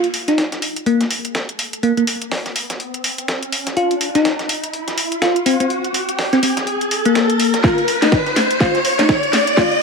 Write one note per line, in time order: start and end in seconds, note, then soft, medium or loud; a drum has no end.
0.00 closed hi-hat soft
0.00 riser medium
0.14 closed hi-hat medium
0.14 open hi-hat loud
0.28 0.43 D#4 medium
0.28 snare soft
0.28 closed hi-hat medium
0.38 snare loud
0.38 closed hi-hat medium
0.52 snare soft
0.52 closed hi-hat soft
0.62 closed hi-hat medium
0.62 open hi-hat loud
0.76 closed hi-hat soft
0.76 closed hi-hat medium
0.86 1.04 A#3 medium
0.86 closed hi-hat medium
1.01 snare soft
1.01 closed hi-hat medium
1.11 closed hi-hat medium
1.11 open hi-hat loud
1.25 closed hi-hat medium
1.35 snare loud
1.35 closed hi-hat medium
1.49 closed hi-hat soft
1.59 closed hi-hat medium
1.59 open hi-hat loud
1.73 closed hi-hat medium
1.83 1.92 A#3 medium
1.83 closed hi-hat medium
1.97 2.04 A#3 medium
1.97 closed hi-hat soft
2.07 closed hi-hat medium
2.07 open hi-hat loud
2.22 closed hi-hat medium
2.32 snare loud
2.32 open hi-hat medium
2.46 snare soft
2.46 closed hi-hat soft
2.56 closed hi-hat medium
2.56 open hi-hat loud
2.70 snare medium
2.70 closed hi-hat medium
2.80 closed hi-hat medium
2.94 closed hi-hat medium
3.04 closed hi-hat medium
3.04 open hi-hat loud
3.18 closed hi-hat medium
3.28 snare loud
3.28 closed hi-hat medium
3.43 closed hi-hat soft
3.52 closed hi-hat medium
3.52 open hi-hat loud
3.67 snare medium
3.67 closed hi-hat medium
3.77 3.94 F4 medium
3.77 closed hi-hat medium
3.91 closed hi-hat soft
4.01 closed hi-hat medium
4.01 open hi-hat loud
4.15 4.30 D#4 medium
4.15 snare soft
4.15 closed hi-hat medium
4.25 snare loud
4.25 closed hi-hat medium
4.39 snare soft
4.39 closed hi-hat soft
4.49 closed hi-hat medium
4.49 open hi-hat loud
4.64 closed hi-hat medium
4.64 closed hi-hat soft
4.73 closed hi-hat medium
4.88 snare soft
4.88 closed hi-hat medium
4.98 closed hi-hat medium
4.98 open hi-hat loud
5.12 closed hi-hat medium
5.22 5.39 F4 medium
5.22 snare loud
5.22 closed hi-hat medium
5.36 closed hi-hat soft
5.46 5.55 C4 medium
5.46 closed hi-hat medium
5.46 open hi-hat loud
5.60 5.67 C4 medium
5.60 closed hi-hat medium
5.70 closed hi-hat medium
5.84 closed hi-hat soft
5.94 closed hi-hat medium
5.94 open hi-hat loud
6.09 closed hi-hat medium
6.19 snare loud
6.19 open hi-hat medium
6.33 6.39 C4 medium
6.33 snare soft
6.33 closed hi-hat soft
6.43 6.52 C4 medium
6.43 closed hi-hat medium
6.43 open hi-hat loud
6.57 snare medium
6.57 closed hi-hat medium
6.67 closed hi-hat medium
6.81 closed hi-hat soft
6.91 closed hi-hat medium
6.91 open hi-hat loud
7.05 7.54 A#3 medium
7.05 closed hi-hat medium
7.15 snare loud
7.15 closed hi-hat medium
7.30 closed hi-hat soft
7.40 closed hi-hat medium
7.40 open hi-hat loud
7.54 snare medium
7.54 closed hi-hat medium
7.64 7.81 F4 medium
7.64 kick loud
7.64 snare medium
7.64 closed hi-hat medium
7.78 closed hi-hat soft
7.88 closed hi-hat medium
7.88 open hi-hat loud
8.02 8.17 D#4 medium
8.02 snare soft
8.02 closed hi-hat medium
8.12 kick loud
8.12 snare loud
8.12 closed hi-hat medium
8.26 snare soft
8.26 closed hi-hat soft
8.36 snare medium
8.36 closed hi-hat medium
8.36 open hi-hat loud
8.51 closed hi-hat soft
8.51 closed hi-hat medium
8.61 8.78 F4 medium
8.61 kick loud
8.61 snare soft
8.61 closed hi-hat medium
8.75 snare soft
8.75 closed hi-hat soft
8.85 closed hi-hat medium
8.85 open hi-hat loud
8.99 9.14 D#4 medium
8.99 snare soft
8.99 closed hi-hat medium
9.09 kick loud
9.09 snare loud
9.09 closed hi-hat medium
9.23 closed hi-hat soft
9.33 snare medium
9.33 closed hi-hat medium
9.33 open hi-hat loud
9.47 closed hi-hat medium
9.57 9.75 F4 medium
9.57 kick loud
9.57 snare medium
9.57 closed hi-hat medium
9.72 closed hi-hat soft